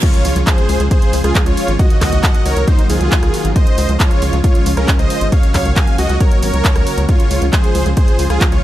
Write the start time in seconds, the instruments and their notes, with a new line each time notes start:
0.03 analog synth pad C#3 F3 G#3 F4, supersaw synth F4 C#5, kick, closed hi-hat, crash, impact
0.14 closed hi-hat
0.25 analog synth bass C#2, analog synth pad C#3 F3 G#3 F4, open hi-hat
0.36 analog synth bass C#2, closed hi-hat
0.47 analog synth pad C#3 F3 G#3 F4, supersaw synth G#4 C5, kick, clap, closed hi-hat
0.58 closed hi-hat
0.69 analog synth bass C#2, analog synth pad C#3 F3 G#3 F4, open hi-hat
0.80 analog synth bass C#2, closed hi-hat
0.91 analog synth pad C#3 F3 G#3 F4, supersaw synth G#4 C5, kick, closed hi-hat
1.02 analog synth pad C#3 F3 G#3 F4, closed hi-hat
1.13 analog synth bass C#2, open hi-hat
1.24 analog synth bass C#2, analog synth pad C#3 F3 G#3 F4, supersaw synth F4 G#4, cross-stick, closed hi-hat
1.35 kick, clap, closed hi-hat
1.46 analog synth bass C#2, analog synth pad C#3 F3 G#3 F4, supersaw synth F4 C#5, closed hi-hat
1.57 open hi-hat
1.68 analog synth bass G#1, analog synth pad C#3 F3 G#3 F4, closed hi-hat
1.79 analog synth pad D#3 F#3 A#3 F#4, supersaw synth F#4 D#5, kick, closed hi-hat
1.90 closed hi-hat
2.01 analog synth bass C#2, analog synth pad D#3 F#3 A#3 F#4, supersaw synth F#4 D#5, kick, cross-stick, clap, open hi-hat
2.12 analog synth bass C#2, closed hi-hat
2.23 analog synth pad D#3 F#3 A#3 F#4, supersaw synth D#5 F#5, kick, clap, closed hi-hat
2.35 closed hi-hat
2.45 analog synth bass C#2, analog synth pad D#3 F#3 A#3 F#4, supersaw synth A#4 C#5, open hi-hat
2.56 analog synth bass C#2, closed hi-hat
2.68 analog synth pad D#3 F#3 A#3 F#4, supersaw synth D#4 C5, kick, closed hi-hat
2.79 analog synth pad D#3 F#3 A#3 F#4, closed hi-hat
2.90 analog synth bass C#2, supersaw synth F4 G#4, open hi-hat
3.01 analog synth bass C#2, analog synth pad D#3 F#3 A#3 F#4, closed hi-hat
3.12 kick, clap, closed hi-hat
3.23 analog synth bass C#2, analog synth pad D#3 F#3 A#3 F#4, cross-stick, closed hi-hat
3.34 open hi-hat
3.45 analog synth bass G#1, analog synth pad D#3 F#3 A#3 F#4, closed hi-hat
3.56 analog synth pad C#3 F3 G#3 F4, supersaw synth C5 D#5, kick, closed hi-hat
3.67 closed hi-hat
3.78 analog synth bass C#2, analog synth pad C#3 F3 G#3 F4, open hi-hat
3.89 analog synth bass C#2, closed hi-hat
4.00 analog synth pad C#3 F3 G#3 F4, supersaw synth F4 C#5, kick, clap, closed hi-hat
4.11 closed hi-hat
4.22 analog synth bass C#2, analog synth pad C#3 F3 G#3 F4, open hi-hat
4.33 analog synth bass C#2, closed hi-hat
4.44 analog synth pad C#3 F3 G#3 F4, supersaw synth F4 C#5, kick, closed hi-hat
4.55 analog synth pad C#3 F3 G#3 F4, closed hi-hat
4.66 analog synth bass C#2, open hi-hat
4.77 analog synth bass C#2, analog synth pad C#3 F3 G#3 F4, supersaw synth C#4 A#4, cross-stick, closed hi-hat
4.88 kick, clap, closed hi-hat
4.99 analog synth bass C#2, analog synth pad C#3 F3 G#3 F4, supersaw synth C5 D#5, closed hi-hat
5.10 open hi-hat
5.21 analog synth bass G#1, analog synth pad C#3 F3 G#3 F4, closed hi-hat
5.32 analog synth pad C#3 F#3 A#3 F#4, supersaw synth C#5 F5, kick, closed hi-hat
5.43 closed hi-hat
5.54 analog synth bass C#2, analog synth pad C#3 F#3 A#3 F#4, supersaw synth C#5 F5, kick, cross-stick, clap, open hi-hat
5.65 analog synth bass C#2, closed hi-hat
5.76 analog synth pad C#3 F#3 A#3 F#4, supersaw synth F5 G#5, kick, clap, closed hi-hat
5.87 closed hi-hat
5.98 analog synth bass C#2, analog synth pad C#3 F#3 A#3 F#4, supersaw synth F#4 D#5, open hi-hat
6.09 analog synth bass C#2, closed hi-hat
6.21 analog synth pad C#3 F#3 A#3 F#4, supersaw synth A#4 C#5, kick, closed hi-hat
6.32 analog synth pad C#3 F#3 A#3 F#4, closed hi-hat
6.43 analog synth bass G#1, supersaw synth A#4 C#5, open hi-hat
6.54 analog synth bass C#2, analog synth pad C#3 F#3 A#3 F#4, closed hi-hat
6.65 kick, clap, closed hi-hat
6.76 analog synth bass C#2, analog synth pad C#3 F#3 A#3 F#4, cross-stick, closed hi-hat
6.87 open hi-hat
6.98 analog synth bass C#2, analog synth pad C#3 F#3 A#3 F#4, closed hi-hat
7.09 analog synth pad C#3 F3 G#3 F4, supersaw synth F4 C#5, kick, closed hi-hat
7.20 closed hi-hat
7.31 analog synth bass C#2, analog synth pad C#3 F3 G#3 F4, open hi-hat
7.42 analog synth bass C#2, closed hi-hat
7.53 analog synth pad C#3 F3 G#3 F4, supersaw synth G#4 C5, kick, clap, closed hi-hat
7.64 closed hi-hat
7.75 analog synth bass C#2, analog synth pad C#3 F3 G#3 F4, open hi-hat
7.86 analog synth bass C#2, closed hi-hat
7.97 analog synth pad C#3 F3 G#3 F4, supersaw synth G#4 C5, kick, closed hi-hat
8.08 analog synth pad C#3 F3 G#3 F4, closed hi-hat
8.19 analog synth bass C#2, open hi-hat
8.30 analog synth bass C#2, analog synth pad C#3 F3 G#3 F4, supersaw synth F4 G#4, cross-stick, closed hi-hat
8.41 kick, clap, closed hi-hat
8.52 analog synth bass C#2, analog synth pad C#3 F3 G#3 F4, supersaw synth F4 C#5, closed hi-hat